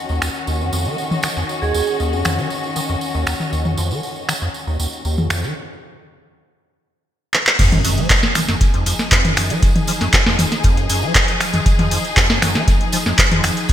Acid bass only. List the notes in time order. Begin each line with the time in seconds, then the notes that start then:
0.10 D#2
0.22 D#2
0.47 D#2
0.60 F2
0.73 F2
0.86 D#3
1.24 D#3
1.37 F2
1.62 D#2
1.74 D#2
2.00 D#2
2.13 F2
2.25 F2
2.38 D#3
2.76 D#3
2.89 F2
3.15 D#2
3.52 D#2
3.65 F2
3.78 F2
3.91 D#3
4.29 D#3
4.42 F2
4.67 D#2
4.79 D#2
5.05 D#2
5.18 F2
5.30 F2
5.43 D#3
7.59 F2
7.72 F#2
7.85 F#2
7.98 F3
8.35 F3
8.49 F#2
8.74 F2
8.86 F2
9.12 F2
9.25 F#2
9.37 F#2
9.50 F3
9.88 F3
10.01 F#2
10.26 F2
10.39 F2
10.64 F2
10.77 F#2
10.90 F#2
11.03 F3
11.40 F3
11.54 F#2
11.79 F2
11.91 F2
12.17 F2
12.30 F#2
12.42 F#2
12.55 F3
12.93 F3
13.06 F#2
13.32 F2
13.44 F2
13.69 F2